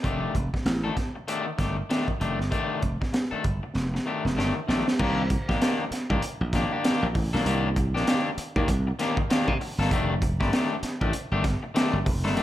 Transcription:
0.03 slap bass F1, clean electric guitar D#3 A3 D4 G4, kick, closed hi-hat
0.35 slap bass F1, kick, closed hi-hat
0.54 muted clean electric guitar stroke, kick, snare
0.65 slap bass A1, muted clean electric guitar stroke, snare, closed hi-hat
0.84 clean electric guitar D#3 A3 D4 A4
0.96 muted clean electric guitar stroke, kick, snare, closed hi-hat
1.16 muted clean electric guitar stroke
1.28 clean electric guitar D#3 A3 D4 G4, closed hi-hat
1.46 muted clean electric guitar stroke
1.58 slap bass G1, clean electric guitar D#3 A3 D4 G4, kick, snare, closed hi-hat
1.78 muted clean electric guitar stroke
1.90 clean electric guitar D#3 A3 D4 G4, snare, closed hi-hat
2.08 muted clean electric guitar stroke, kick
2.20 slap bass F1, clean electric guitar D#3 A3 D4 G4, closed hi-hat
2.39 slap bass G1, muted clean electric guitar stroke, snare
2.51 clean electric guitar D#3 A3 D4 G4, kick, closed hi-hat
2.82 slap bass F1, kick, closed hi-hat
3.01 muted clean electric guitar stroke, kick, snare
3.13 muted clean electric guitar stroke, snare, closed hi-hat
3.31 clean electric guitar D#3 A3 D4 A4, muted slap bass stroke
3.44 slap bass G1, muted clean electric guitar stroke, kick, closed hi-hat
3.63 muted clean electric guitar stroke
3.75 slap bass F1, snare
3.94 muted clean electric guitar stroke, snare
4.06 clean electric guitar D#3 A3 D4 G4
4.25 slap bass F1, muted clean electric guitar stroke, snare
4.37 slap bass G1, clean electric guitar D#3 A3 D4 G4, snare
4.56 muted clean electric guitar stroke
4.68 slap bass A#1, clean electric guitar D#3 A3 D4 G4, snare
4.87 muted clean electric guitar stroke, snare
4.99 slap bass C2, clean electric guitar D#3 A#3 D4 G4, kick, crash
5.30 muted clean electric guitar stroke, kick, closed hi-hat
5.49 slap bass A#1, clean electric guitar D#3 A#3 D4 G4, kick, snare
5.61 clean electric guitar D#3 A#3 D4 G4, snare, closed hi-hat
5.91 muted slap bass stroke, muted clean electric guitar stroke, snare, closed hi-hat
6.10 slap bass C2, clean electric guitar D#3 A#3 D4 G4, kick
6.22 muted slap bass stroke, muted clean electric guitar stroke, closed hi-hat
6.41 slap bass A#1, muted clean electric guitar stroke
6.53 clean electric guitar D#3 A#3 D4 G4, kick, snare, closed hi-hat
6.72 clean electric guitar D#3 A#3 D4 G4
6.84 clean electric guitar D#3 A#3 D4 G4, snare, closed hi-hat
7.03 slap bass A#1
7.15 slap bass A1, muted clean electric guitar stroke, kick, open hi-hat
7.33 slap bass A#1, clean electric guitar D#3 A#3 D4 A4, snare
7.45 slap bass C2, clean electric guitar D#3 A#3 D4 G4, closed hi-hat
7.76 muted clean electric guitar stroke, kick, closed hi-hat
7.94 slap bass A#1, clean electric guitar D#3 A#3 D4 G4, snare
8.07 clean electric guitar D#3 A#3 D4 G4, snare, closed hi-hat
8.38 muted slap bass stroke, muted clean electric guitar stroke, closed hi-hat
8.56 slap bass D#2, clean electric guitar D#3 A#3 D4 G4, kick
8.68 slap bass C2, muted clean electric guitar stroke, kick, closed hi-hat
8.87 muted clean electric guitar stroke
8.99 clean electric guitar D#3 A#3 D4 G4, snare, closed hi-hat
9.17 muted clean electric guitar stroke, kick
9.30 clean electric guitar D#3 A#3 D4 G4, snare, closed hi-hat
9.48 slap bass C3, kick
9.61 muted clean electric guitar stroke, open hi-hat
9.78 slap bass G1, clean electric guitar D#3 A#3 D4 A4, snare
9.91 slap bass F1, clean electric guitar D#3 A3 D4 G4, kick, closed hi-hat
10.22 muted clean electric guitar stroke, kick, closed hi-hat
10.40 slap bass G1, clean electric guitar D#3 A3 D4 G4, kick, snare
10.52 clean electric guitar D#3 A3 D4 G4, snare, closed hi-hat
10.83 muted slap bass stroke, muted clean electric guitar stroke, snare, closed hi-hat
11.01 slap bass A1, clean electric guitar D#3 A3 D4 G4, kick
11.13 muted clean electric guitar stroke, muted slap bass stroke, closed hi-hat
11.32 slap bass G1, clean electric guitar D#3 A3 D4 G4
11.44 muted clean electric guitar stroke, kick, snare, closed hi-hat
11.63 muted clean electric guitar stroke
11.75 clean electric guitar D#3 A3 D4 G4, snare, closed hi-hat
11.93 slap bass G1
12.05 slap bass F1, muted clean electric guitar stroke, kick, open hi-hat
12.24 slap bass G1, clean electric guitar D#3 A3 D4 A4, snare
12.36 slap bass F1, clean electric guitar D#3 A3 D4 G4, closed hi-hat

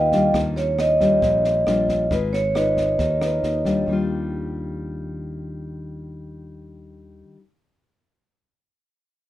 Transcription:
Already playing: fingered electric bass D#2, nylon-string guitar D#3, vibraphone D#5 F5 G5
0.12 nylon-string guitar G3 D4 F4, kick, snare
0.34 fingered electric bass D#2, nylon-string guitar D#3, kick, cross-stick, snare
0.56 vibraphone C#5, snare
0.79 vibraphone D#5, cross-stick, snare
1.00 nylon-string guitar G3 D4 F4, kick, snare
1.22 fingered electric bass A#1, nylon-string guitar A#2, kick, snare
1.44 snare
1.67 fingered electric bass A#1, nylon-string guitar G3 D4 F4, cross-stick, snare
1.89 kick, snare
2.10 fingered electric bass G#1, nylon-string guitar G#3 D#4 F4 B4, kick, snare
2.33 vibraphone C#5, snare
2.55 nylon-string guitar D#4 F4 B4, vibraphone D#5, cross-stick, snare
2.77 kick, snare
2.99 fingered electric bass D#2, nylon-string guitar D#3, kick, snare
3.21 nylon-string guitar D#4 F4 B4, cross-stick, snare
3.43 fingered electric bass D#2, snare
3.65 nylon-string guitar G3 D4 F4, kick, snare
3.86 fingered electric bass D#2, nylon-string guitar D#3 G3
3.91 nylon-string guitar D4 F4

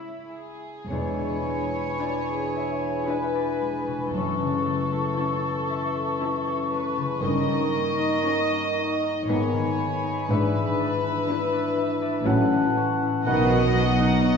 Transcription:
Already playing: harp C#3 G#3 E4 C#5, viola section G#3 C#4, cello section E4, violin section G#4
0.28 violin section G#4
0.90 double bass section E1, harp E2, cello section E2, bassoon E3, french horn section G#3 D4, clarinet D4, violin section C#5, cor anglais G#5, flute B5
1.19 harp B2
1.47 harp G#3
1.74 harp E4
2.01 viola section D4 E4, harp D5, violin section G#5
2.28 harp G#4
2.56 harp E5
2.83 harp G#4
3.07 viola section D4 E4, violin section B4 G#5, harp E5
3.35 harp D5
3.61 harp G#3
3.87 harp B2
4.12 double bass section F#1, harp F#2, cello section F#2, french horn section E3 C#4, clarinet C#4, violin section A4, cor anglais A5, flute C#6
4.40 harp C#3
4.66 harp A3
4.92 harp E4
5.17 viola section C#4 E4, harp C#5, violin section A5
5.44 harp A4
5.70 harp E5
5.96 harp A4
6.21 viola section C#4 E4, harp E5, violin section A5
6.47 harp C#5
6.71 harp A3, violin section B4
6.97 harp C#3
7.21 double bass section G1, cello section G2, harp G2, bassoon D#3, french horn section D#3 C#4, clarinet D#4, cor anglais A#4, violin section D#5
7.48 harp G3
7.74 harp A#3
7.99 harp D#4
8.25 viola section C#4 D#4, harp C#5, violin section A#5
8.51 harp A#4
8.77 harp D#5
9.02 harp A#4
9.26 double bass section G#1, harp G#2, cello section G#2, french horn section D#3 B3, viola section B3 D#4, violin section C#5 B5, cor anglais G#5, flute B5
9.53 harp D#3
9.78 harp B3
10.04 harp D#4
10.27 double bass section G#1, harp G#2, cello section G#2, french horn section E3 D4, bassoon E3, clarinet D4, violin section B4, cor anglais E5
10.55 harp G#3
10.80 harp D4
11.05 harp E4
11.28 viola section D4 E4, harp B4, violin section B5
11.52 harp D5
11.77 harp E5
12.02 harp D5
12.24 double bass section A1, cello section A2, harp A2, french horn section F#3 C#4, clarinet C#4, viola section C#4 E4, cor anglais F#5, violin section F#5, flute A5
12.52 harp E3
12.77 harp C#4
13.02 harp E4
13.26 double bass section B1, cello section B2, harp B2, bassoon D#3, viola section D#3 B3, french horn section F#3 D#4, clarinet B3, violin section D#5 F#5, cor anglais F#5, flute B5
13.52 harp F#3, viola section F#3
13.76 viola section B3, harp B3
14.00 viola section D#4, harp D#4
14.23 viola section B3, harp F#4, violin section D#5

